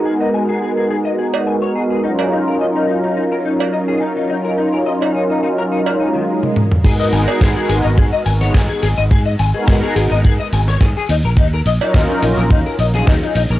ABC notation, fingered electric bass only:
X:1
M:4/4
L:1/16
Q:1/4=106
K:Abdor
V:1 name="Fingered electric bass" clef=bass
z16 | z16 | z16 | A,,2 A,,, z A,, z A,,, A,,, A,, z A,,,2 A,, z A,,, A,,, |
A,,2 A,,, z A,, z A,,, A,,, A,, z A,,,2 A,, z E,, B,,, | E,,2 B,,, z E,, z B,,, B,,, E,, z B,,,2 E,, z B,,, B,,, |]